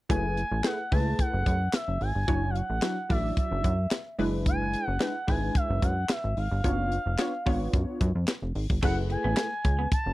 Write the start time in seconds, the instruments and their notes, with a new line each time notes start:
0.09 analog synth bass F#1, analog polysynth A3 E4 G#4 B4, analog synth lead G#5, kick, closed hi-hat
0.37 closed hi-hat
0.52 analog synth bass A1
0.64 analog polysynth A3 E4 G#4 B4, analog synth lead F#5, snare, clap, closed hi-hat
0.92 analog synth bass C#2, analog polysynth A3 E4 G#4 B4, analog synth lead A5, kick, open hi-hat
1.19 analog synth lead F#5, kick, closed hi-hat
1.34 analog synth bass F#1
1.46 analog synth bass F#2, kick, closed hi-hat
1.73 analog synth lead E5, snare, clap, closed hi-hat
1.88 analog synth bass F#1
2.01 analog synth bass G#1, analog synth lead G#5, open hi-hat
2.15 analog synth bass G1
2.28 analog synth bass F#1, analog polysynth F#3 D4 E4 C#5, kick, closed hi-hat
2.50 analog synth lead F5
2.55 analog synth lead F#5, closed hi-hat
2.70 analog synth bass A1
2.82 analog polysynth F#3 D4 E4 F#4, snare, clap, closed hi-hat
3.09 analog synth bass A1, analog polysynth F#3 D4 E4 D5, analog synth lead E5, kick, open hi-hat
3.37 analog synth lead E5, kick, closed hi-hat
3.52 analog synth bass F#1
3.64 analog synth bass F#2, kick, closed hi-hat
3.91 snare, clap, closed hi-hat
4.19 analog synth bass F#1, analog polysynth G#3 D4 E4 B4, open hi-hat
4.46 analog synth lead G#5, kick, closed hi-hat
4.73 closed hi-hat
4.87 analog synth bass F#1, analog synth lead F#5
5.00 analog polysynth G#3 D4 E4 B4, analog synth lead F#5, snare, clap, closed hi-hat
5.27 analog synth bass G#1, analog polysynth G#3 D4 E4 B4, analog synth lead G#5, kick, open hi-hat
5.55 analog synth lead E5, kick, closed hi-hat
5.70 analog synth bass F#1
5.82 analog synth bass F#2, analog synth lead F#5, kick, closed hi-hat
6.09 analog synth lead E5, snare, clap, closed hi-hat
6.24 analog synth bass G#1
6.37 analog synth bass G#1, analog synth lead F5, open hi-hat
6.52 analog synth bass G1
6.64 analog synth bass F#1, analog polysynth B3 D4 F4 C#5, kick, closed hi-hat
6.92 closed hi-hat
7.06 analog synth bass F1
7.18 analog polysynth B3 D4 F4 C#5, snare, clap, closed hi-hat
7.46 analog synth bass G#1, analog polysynth B3 D4 F4 C#5, kick, open hi-hat
7.73 analog synth bass F#2, kick, closed hi-hat
8.01 analog synth bass F#2, kick, closed hi-hat
8.15 analog synth bass F2
8.28 snare, clap, closed hi-hat
8.42 analog synth bass F1
8.55 analog synth bass G#1, open hi-hat
8.70 analog synth bass G1, kick
8.82 analog synth bass F#1, clean electric guitar F#3, analog polysynth A3 E4 G#4 B4, analog synth lead F#5, kick, crash
9.10 analog synth lead G#5, muted clean electric guitar stroke, closed hi-hat
9.24 analog synth bass A1, clean electric guitar B3
9.37 clean electric guitar A3, snare, clap, closed hi-hat
9.64 analog synth bass C#2, muted clean electric guitar stroke, kick, closed hi-hat
9.79 clean electric guitar B3
9.92 analog synth lead A5, kick, closed hi-hat
10.06 analog synth bass F#1